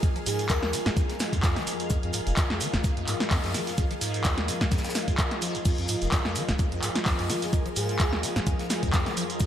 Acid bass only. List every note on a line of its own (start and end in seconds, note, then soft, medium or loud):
0.03 0.10 F2 medium
0.16 0.19 F3 loud
0.26 0.51 G#2 medium
0.50 0.75 D#2 medium
0.73 0.80 F3 loud
0.86 0.90 G#2 loud
0.97 1.04 F2 medium
1.33 1.58 F2 loud
1.56 1.65 F3 loud
1.67 1.74 F3 loud
1.90 1.97 F2 medium
2.03 2.12 F2 medium
2.14 2.21 G#2 medium
2.27 2.33 F1 loud
2.37 2.44 F2 loud
2.50 2.62 F2 medium
2.61 2.68 F3 loud
2.74 2.77 F1 medium
2.84 2.91 F2 medium
2.97 3.06 F2 medium
3.08 3.15 G#2 medium
3.31 3.38 F2 loud
3.44 3.56 F#2 medium
3.55 3.62 F3 loud
3.78 3.85 F2 medium
3.91 3.94 F3 loud
4.01 4.26 G#2 medium
4.25 4.50 D#2 medium
4.48 4.55 F3 loud
4.61 4.65 G#2 loud
4.72 4.79 F2 medium
5.08 5.14 F2 medium
5.19 5.23 F2 loud
5.42 5.56 F3 medium
5.55 5.58 F2 loud
5.66 5.73 F2 medium
5.78 5.87 F2 medium
5.89 5.96 G#2 medium
6.02 6.08 F1 loud
6.12 6.19 F2 loud
6.25 6.37 F2 medium
6.36 6.43 F3 loud
6.49 6.52 F1 medium
6.59 6.66 F2 medium
6.72 6.81 F2 medium
6.83 6.90 G#2 medium
7.06 7.13 F2 loud
7.19 7.31 F#2 medium
7.29 7.37 F3 loud
7.53 7.60 F2 medium
7.66 7.69 F3 loud
7.76 8.01 G#2 medium
8.00 8.25 D#2 medium
8.23 8.30 F3 loud
8.36 8.40 G#2 loud
8.47 8.54 F2 medium
8.83 9.08 F2 loud
9.06 9.15 F3 loud
9.17 9.24 F3 loud
9.41 9.46 F2 medium